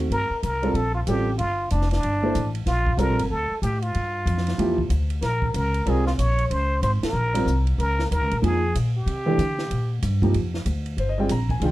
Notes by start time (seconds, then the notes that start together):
Already playing: A3 C4 D#4 F#4
0.10 G2 A#4, ride
0.30 muted upright bass stroke
0.43 C2 A#4, hi-hat pedal, ride
0.62 G3 C4 F4 A4, ride
0.74 A#1 A4, ride
0.94 F4
1.07 A1 G3 C4 F4 G4 A4, hi-hat pedal, ride
1.38 G1 F4, ride
1.70 F1 D4, hi-hat pedal, ride
1.81 snare
1.91 D4, snare, ride
2.03 G1, ride
2.22 A#3 E4 A4 C5
2.35 A1, hi-hat pedal, ride
2.55 ride
2.66 A#1 F4, snare, ride
2.87 kick
2.97 C2 G3 C4 F4 A4 A#4, hi-hat pedal, ride
3.08 A#1
3.19 G1, ride
3.30 D2 A4
3.51 muted upright bass stroke
3.62 A2 G4, hi-hat pedal, ride
3.82 F4, ride
3.95 G2, ride
4.26 F2, hi-hat pedal, ride
4.38 snare
4.47 snare, ride
4.58 E2 F3 A#3 E4 G4, ride
4.78 kick
4.90 D2, hi-hat pedal, ride
5.10 ride
5.22 A#1 A#4, snare, ride
5.42 kick
5.54 C#2 A#4, hi-hat pedal, ride
5.74 ride
5.86 C2 G3 C4 F4 G#4 A#4, ride
6.07 F4, snare
6.18 A#1 C#5, hi-hat pedal, ride
6.38 ride
6.50 C#2 C5, ride
6.82 G#1 C5, hi-hat pedal, ride
7.02 A#4, muted upright bass stroke, snare, ride
7.13 A#1
7.34 G3 C4 F4 A#4, ride
7.46 C2, hi-hat pedal
7.67 ride
7.78 C#2 A#4, ride
7.99 snare
8.11 D#2 A#4, hi-hat pedal, ride
8.21 C#2
8.31 A#1, ride
8.42 F2 F3 A#3 D#4 G#4, ride
8.75 A#2, hi-hat pedal, ride
8.97 G4
9.06 C3, ride
9.26 E3 A3 D4 G4
9.38 D3, hi-hat pedal, ride
9.59 snare
9.71 A#2, ride
10.02 G2, hi-hat pedal, ride
10.22 F3 A#3 D#4 G4, kick, ride
10.34 F2, ride
10.54 snare
10.65 D2, hi-hat pedal, ride
10.86 ride
10.97 G1 C5, ride
11.09 D#5
11.18 G3 C4 F4 G#4 G5
11.29 A#1 A#5, hi-hat pedal, ride
11.49 G#5, kick, ride
11.60 C2 D#3 G#3 D4 F4, ride
11.65 G5